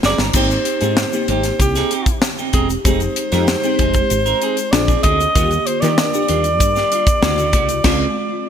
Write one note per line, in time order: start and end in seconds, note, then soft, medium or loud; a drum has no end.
0.00 0.14 F#1 medium
0.00 0.37 G#3 medium
0.00 0.34 C4 medium
0.00 0.19 C4 medium
0.00 0.34 D#4 medium
0.00 0.36 F4 medium
0.00 snare medium
0.04 0.19 D#4 medium
0.04 0.19 G#4 medium
0.04 0.19 D5 medium
0.18 0.29 G1 medium
0.18 0.33 C4 soft
0.18 0.34 D#4 soft
0.18 0.34 A#4 soft
0.18 snare medium
0.33 0.56 G#1 medium
0.33 0.73 A#3 medium
0.33 0.73 C4 medium
0.33 0.54 C4 medium
0.33 0.73 D#4 medium
0.33 0.50 D#4 medium
0.33 0.74 G4 medium
0.33 0.49 G4 medium
0.33 1.26 C5 loud
0.33 kick medium
0.33 crash medium
0.33 shaker medium
0.50 muted clean electric guitar stroke soft
0.50 snare soft
0.50 shaker soft
0.65 muted clean electric guitar stroke soft
0.65 closed hi-hat medium
0.81 1.03 G#2 medium
0.81 1.07 A#3 medium
0.81 1.07 C4 medium
0.81 0.97 C4 medium
0.81 1.07 D#4 medium
0.81 0.97 D#4 medium
0.81 1.08 G4 medium
0.81 0.97 G#4 medium
0.81 closed hi-hat soft
0.81 shaker soft
0.97 snare loud
0.97 shaker medium
1.13 2.16 A#3 medium
1.13 2.16 C4 medium
1.13 2.17 D#4 medium
1.13 2.17 G4 medium
1.13 muted clean electric guitar stroke soft
1.13 shaker soft
1.28 1.50 G#1 medium
1.28 1.48 C4 medium
1.28 1.44 D#4 medium
1.28 1.43 G4 medium
1.28 1.58 C5 medium
1.28 closed hi-hat medium
1.44 muted clean electric guitar stroke soft
1.44 snare soft
1.44 closed hi-hat medium
1.44 shaker soft
1.60 1.81 C2 medium
1.60 2.19 G4 medium
1.60 muted clean electric guitar stroke soft
1.60 kick medium
1.60 closed hi-hat medium
1.60 shaker medium
1.75 1.90 C4 medium
1.75 1.91 D#4 medium
1.75 1.93 G#4 medium
1.75 snare soft
1.75 closed hi-hat soft
1.75 shaker soft
1.91 2.07 C4 medium
1.91 2.07 D#4 medium
1.91 2.06 G4 medium
1.91 closed hi-hat medium
2.06 muted clean electric guitar stroke soft
2.06 kick medium
2.06 closed hi-hat soft
2.06 shaker soft
2.22 muted clean electric guitar stroke soft
2.22 snare loud
2.22 shaker medium
2.38 2.53 C4 medium
2.38 2.54 D#4 medium
2.38 2.54 G4 medium
2.38 shaker soft
2.53 2.75 E1 medium
2.53 2.73 C4 medium
2.53 2.69 D#4 medium
2.53 2.68 G4 medium
2.53 2.68 G#4 medium
2.53 kick medium
2.53 closed hi-hat medium
2.69 muted clean electric guitar stroke soft
2.69 closed hi-hat soft
2.69 shaker soft
2.85 3.07 F1 medium
2.85 3.24 G#3 medium
2.85 3.04 C4 medium
2.85 3.24 C4 medium
2.85 3.01 D#4 medium
2.85 3.24 D#4 medium
2.85 3.24 G4 medium
2.85 3.00 G#4 medium
2.85 4.73 C5 loud
2.85 kick loud
2.85 closed hi-hat medium
2.85 shaker medium
3.00 muted clean electric guitar stroke soft
3.00 closed hi-hat soft
3.00 shaker soft
3.16 muted clean electric guitar stroke soft
3.16 closed hi-hat medium
3.32 3.54 F2 medium
3.32 3.58 G#3 medium
3.32 3.58 C4 medium
3.32 3.48 C4 soft
3.32 3.48 D#4 medium
3.32 3.59 D#4 medium
3.32 3.59 G4 medium
3.32 3.47 A#4 medium
3.32 snare soft
3.32 closed hi-hat soft
3.32 shaker soft
3.48 snare loud
3.48 shaker medium
3.63 4.66 G#3 medium
3.63 4.66 C4 medium
3.63 4.67 D#4 medium
3.63 4.67 G4 medium
3.63 muted clean electric guitar stroke soft
3.63 closed hi-hat soft
3.63 shaker soft
3.79 4.01 F1 medium
3.79 3.98 C4 medium
3.79 3.95 D#4 medium
3.79 3.93 G#4 medium
3.79 kick medium
3.79 closed hi-hat medium
3.94 muted clean electric guitar stroke soft
3.94 kick medium
3.94 closed hi-hat medium
3.94 shaker soft
4.10 4.32 G#1 medium
4.10 muted clean electric guitar stroke soft
4.10 closed hi-hat medium
4.10 shaker medium
4.26 4.40 C4 medium
4.26 4.41 D#4 medium
4.26 4.43 A#4 medium
4.26 closed hi-hat soft
4.26 shaker soft
4.41 4.57 C4 medium
4.41 4.57 D#4 medium
4.41 4.56 G#4 medium
4.41 closed hi-hat medium
4.57 muted clean electric guitar stroke soft
4.57 closed hi-hat medium
4.57 shaker medium
4.71 4.94 A#1 medium
4.71 5.24 C4 medium
4.71 5.24 D4 medium
4.71 5.24 F4 medium
4.71 5.24 G#4 medium
4.71 5.02 D5 loud
4.71 muted clean electric guitar stroke soft
4.71 snare loud
4.71 shaker medium
4.88 5.02 A#3 medium
4.88 5.04 D4 medium
4.88 5.04 G#4 medium
4.88 kick medium
4.88 closed hi-hat soft
4.88 shaker soft
5.03 5.26 D2 medium
5.03 5.23 A#3 medium
5.03 5.20 D4 medium
5.03 5.19 G#4 medium
5.03 5.68 D#5 loud
5.03 kick loud
5.03 closed hi-hat medium
5.20 muted clean electric guitar stroke soft
5.20 closed hi-hat medium
5.20 shaker soft
5.35 5.57 D#2 medium
5.35 5.74 D3 medium
5.35 5.55 G3 medium
5.35 5.74 A#3 medium
5.35 5.51 D4 medium
5.35 5.74 F4 medium
5.35 5.50 F4 loud
5.35 5.74 G4 medium
5.35 kick medium
5.35 closed hi-hat medium
5.35 shaker medium
5.51 muted clean electric guitar stroke soft
5.51 closed hi-hat soft
5.51 shaker soft
5.66 5.82 C5 medium
5.66 muted clean electric guitar stroke soft
5.66 closed hi-hat medium
5.81 6.04 D#3 medium
5.81 5.98 G3 soft
5.81 6.07 A#3 medium
5.81 6.08 D4 medium
5.81 5.97 D4 medium
5.81 6.08 F4 medium
5.81 5.97 G4 medium
5.81 6.08 A#4 medium
5.81 8.49 D5 loud
5.81 snare soft
5.81 closed hi-hat soft
5.81 shaker soft
5.98 snare loud
5.98 shaker medium
6.13 7.16 A#3 medium
6.13 7.16 D4 medium
6.13 7.16 F4 medium
6.13 7.16 G4 medium
6.13 muted clean electric guitar stroke soft
6.13 shaker medium
6.28 6.60 D#2 medium
6.28 6.48 G3 medium
6.28 6.44 D4 medium
6.28 6.43 F4 medium
6.28 closed hi-hat medium
6.44 muted clean electric guitar stroke soft
6.44 closed hi-hat soft
6.44 shaker soft
6.60 6.82 G2 medium
6.60 muted clean electric guitar stroke soft
6.60 kick medium
6.60 closed hi-hat medium
6.60 shaker medium
6.75 6.90 G3 medium
6.75 6.91 D4 medium
6.75 6.92 G4 medium
6.75 snare soft
6.75 shaker soft
6.91 7.06 G3 medium
6.91 7.07 D4 medium
6.91 7.06 F4 medium
6.91 closed hi-hat medium
7.07 muted clean electric guitar stroke medium
7.07 kick loud
7.07 closed hi-hat medium
7.07 shaker medium
7.22 7.53 D2 loud
7.22 7.74 C#3 medium
7.22 7.73 A3 loud
7.22 7.74 E4 medium
7.22 7.74 F#4 loud
7.22 snare loud
7.22 shaker medium
7.37 7.52 A3 soft
7.37 7.53 C#4 medium
7.37 7.53 F#4 medium
7.37 closed hi-hat soft
7.37 shaker soft
7.53 7.84 C2 medium
7.53 7.73 A3 medium
7.53 7.69 C#4 medium
7.53 7.68 F#4 medium
7.53 kick medium
7.53 closed hi-hat medium
7.69 muted clean electric guitar stroke soft
7.69 closed hi-hat medium
7.69 shaker soft
7.84 8.06 C#2 loud
7.84 8.05 G#3 medium
7.84 8.05 C4 medium
7.84 8.06 C4 loud
7.84 8.06 F4 loud
7.84 8.07 G#4 medium
7.84 kick medium
7.84 snare loud
7.84 crash medium